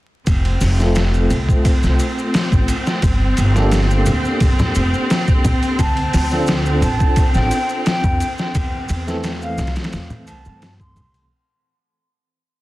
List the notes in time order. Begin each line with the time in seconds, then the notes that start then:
0.26 F1 C4, kick, ride, maracas
0.45 ride
0.61 F1, snare, open hi-hat, maracas
0.79 A3 C4 F4 A4, snare, maracas
0.95 snare, ride, maracas
1.14 maracas
1.30 C2, ride, low conga, maracas
1.49 kick, maracas
1.65 kick, ride, maracas
1.83 C2, snare, maracas
1.99 ride, maracas
2.19 maracas
2.34 snare, ride, maracas
2.52 A1, kick, maracas
2.68 ride, maracas
2.87 snare, maracas
3.02 G1, kick, ride, maracas
3.37 G1, ride, maracas
3.55 A#3 D4 G4 A4, snare, maracas
3.71 snare, ride, maracas
3.91 maracas
4.06 D2, ride, low conga, maracas
4.25 maracas
4.40 G1, kick, ride, maracas
4.59 snare, low conga, maracas
4.75 F1, ride, maracas
4.94 maracas
5.10 snare, ride, maracas
5.27 kick, maracas
5.44 kick, ride, low conga, maracas
5.63 ride, maracas
5.79 D2 A5, kick, ride, maracas
5.97 ride
6.13 D2, snare, open hi-hat, maracas
6.31 C4 D4 F4 A4, snare, maracas
6.47 snare, ride, maracas
6.66 maracas
6.82 A1 A5, ride, low conga, maracas
7.00 kick, maracas
7.16 kick, ride, maracas
7.34 A1 G5, snare, maracas
7.51 ride, maracas
7.69 maracas
7.86 G5, snare, ride, maracas
8.03 F2, kick, maracas
8.20 ride, maracas
8.38 snare, maracas
8.54 E2, kick, ride, maracas
8.89 E2, ride, maracas
9.07 E3 A3 C4 A4, snare, maracas
9.24 snare, ride, maracas
9.42 F5, maracas
9.58 C2, snare, ride, low conga, maracas
9.67 snare, ride
9.76 snare, ride, maracas
9.84 snare, ride
9.93 E2, snare, ride, maracas
10.10 low conga, maracas
10.27 C2 A5, ride, maracas
10.45 G2, maracas
10.62 snare, ride, maracas
10.80 C6, kick, maracas
10.96 C2, kick, ride, low conga, maracas
11.14 ride, maracas